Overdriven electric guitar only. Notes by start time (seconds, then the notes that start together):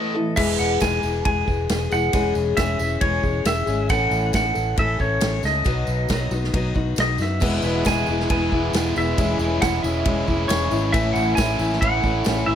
Already playing: A2 E3 A3
0.15 A2 E3
7.41 E2 B2 E3 G#3 B3 E4
7.64 E3 G#3 B3 E4
7.86 E3 G#3 B3 E4
8.09 E3 G#3 B3 E4
8.52 E3 G#3 B3 E4
8.74 E2 B2 E3 G#3 B3 E4
9.18 E3 G#3 C#4 E4
9.40 G#3 C#4 E4
9.61 E3 G#3 C#4 E4
9.83 G#3 C#4 E4
10.27 G#3 C#4 E4
10.49 E3 G#3 C#4 E4
10.93 A2 E3 A3 C#4 E4
11.15 A3 C#4 E4
11.37 E3 A3 C#4 E4
11.59 A3 C#4 E4
12.03 A3 C#4 E4
12.25 A2 E3 A3 C#4 E4